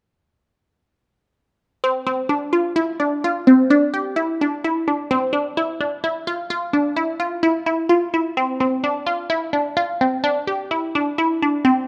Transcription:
0, 0, Header, 1, 2, 480
1, 0, Start_track
1, 0, Tempo, 467290
1, 1879, Time_signature, 7, 2, 24, 8
1, 12200, End_track
2, 0, Start_track
2, 0, Title_t, "Synth pluck"
2, 0, Program_c, 0, 84
2, 1887, Note_on_c, 0, 60, 81
2, 2090, Note_off_c, 0, 60, 0
2, 2122, Note_on_c, 0, 60, 74
2, 2328, Note_off_c, 0, 60, 0
2, 2355, Note_on_c, 0, 62, 67
2, 2563, Note_off_c, 0, 62, 0
2, 2595, Note_on_c, 0, 65, 63
2, 2804, Note_off_c, 0, 65, 0
2, 2834, Note_on_c, 0, 64, 76
2, 3043, Note_off_c, 0, 64, 0
2, 3079, Note_on_c, 0, 62, 66
2, 3285, Note_off_c, 0, 62, 0
2, 3330, Note_on_c, 0, 65, 68
2, 3532, Note_off_c, 0, 65, 0
2, 3566, Note_on_c, 0, 60, 66
2, 3770, Note_off_c, 0, 60, 0
2, 3804, Note_on_c, 0, 62, 77
2, 4009, Note_off_c, 0, 62, 0
2, 4043, Note_on_c, 0, 67, 58
2, 4248, Note_off_c, 0, 67, 0
2, 4275, Note_on_c, 0, 64, 70
2, 4484, Note_off_c, 0, 64, 0
2, 4533, Note_on_c, 0, 62, 69
2, 4733, Note_off_c, 0, 62, 0
2, 4770, Note_on_c, 0, 64, 67
2, 4972, Note_off_c, 0, 64, 0
2, 5009, Note_on_c, 0, 62, 59
2, 5211, Note_off_c, 0, 62, 0
2, 5247, Note_on_c, 0, 60, 82
2, 5450, Note_off_c, 0, 60, 0
2, 5472, Note_on_c, 0, 62, 70
2, 5682, Note_off_c, 0, 62, 0
2, 5724, Note_on_c, 0, 64, 72
2, 5929, Note_off_c, 0, 64, 0
2, 5963, Note_on_c, 0, 62, 62
2, 6168, Note_off_c, 0, 62, 0
2, 6202, Note_on_c, 0, 64, 70
2, 6408, Note_off_c, 0, 64, 0
2, 6442, Note_on_c, 0, 65, 69
2, 6648, Note_off_c, 0, 65, 0
2, 6679, Note_on_c, 0, 65, 75
2, 6886, Note_off_c, 0, 65, 0
2, 6916, Note_on_c, 0, 62, 67
2, 7125, Note_off_c, 0, 62, 0
2, 7154, Note_on_c, 0, 64, 73
2, 7363, Note_off_c, 0, 64, 0
2, 7392, Note_on_c, 0, 65, 62
2, 7602, Note_off_c, 0, 65, 0
2, 7631, Note_on_c, 0, 64, 75
2, 7842, Note_off_c, 0, 64, 0
2, 7872, Note_on_c, 0, 64, 66
2, 8082, Note_off_c, 0, 64, 0
2, 8108, Note_on_c, 0, 65, 69
2, 8320, Note_off_c, 0, 65, 0
2, 8358, Note_on_c, 0, 64, 61
2, 8566, Note_off_c, 0, 64, 0
2, 8598, Note_on_c, 0, 60, 77
2, 8806, Note_off_c, 0, 60, 0
2, 8838, Note_on_c, 0, 60, 70
2, 9046, Note_off_c, 0, 60, 0
2, 9077, Note_on_c, 0, 62, 69
2, 9285, Note_off_c, 0, 62, 0
2, 9311, Note_on_c, 0, 65, 69
2, 9522, Note_off_c, 0, 65, 0
2, 9550, Note_on_c, 0, 64, 77
2, 9762, Note_off_c, 0, 64, 0
2, 9790, Note_on_c, 0, 62, 65
2, 10001, Note_off_c, 0, 62, 0
2, 10033, Note_on_c, 0, 65, 76
2, 10243, Note_off_c, 0, 65, 0
2, 10282, Note_on_c, 0, 60, 66
2, 10489, Note_off_c, 0, 60, 0
2, 10515, Note_on_c, 0, 62, 83
2, 10725, Note_off_c, 0, 62, 0
2, 10759, Note_on_c, 0, 67, 61
2, 10967, Note_off_c, 0, 67, 0
2, 11001, Note_on_c, 0, 64, 67
2, 11208, Note_off_c, 0, 64, 0
2, 11250, Note_on_c, 0, 62, 73
2, 11454, Note_off_c, 0, 62, 0
2, 11487, Note_on_c, 0, 64, 71
2, 11692, Note_off_c, 0, 64, 0
2, 11735, Note_on_c, 0, 62, 65
2, 11937, Note_off_c, 0, 62, 0
2, 11963, Note_on_c, 0, 60, 78
2, 12170, Note_off_c, 0, 60, 0
2, 12200, End_track
0, 0, End_of_file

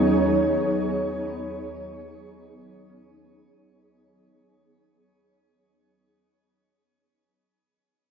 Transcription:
0, 0, Header, 1, 3, 480
1, 0, Start_track
1, 0, Tempo, 810811
1, 271, Time_signature, 4, 2, 24, 8
1, 4800, End_track
2, 0, Start_track
2, 0, Title_t, "Ambient pad"
2, 0, Program_c, 0, 92
2, 0, Note_on_c, 0, 39, 57
2, 0, Note_on_c, 0, 54, 66
2, 0, Note_on_c, 0, 59, 63
2, 0, Note_on_c, 0, 63, 55
2, 0, Note_on_c, 0, 68, 88
2, 0, Note_on_c, 0, 73, 70
2, 2184, Note_off_c, 0, 59, 0
2, 2188, Note_off_c, 0, 39, 0
2, 2188, Note_off_c, 0, 73, 0
2, 2190, Note_off_c, 0, 54, 0
2, 2190, Note_off_c, 0, 63, 0
2, 2191, Note_off_c, 0, 68, 0
2, 4800, End_track
3, 0, Start_track
3, 0, Title_t, "Harp"
3, 0, Program_c, 1, 46
3, 0, Note_on_c, 1, 61, 51
3, 749, Note_on_c, 1, 59, 65
3, 1506, Note_off_c, 1, 61, 0
3, 1713, Note_on_c, 1, 61, 61
3, 2588, Note_off_c, 1, 59, 0
3, 3428, Note_off_c, 1, 61, 0
3, 4800, End_track
0, 0, End_of_file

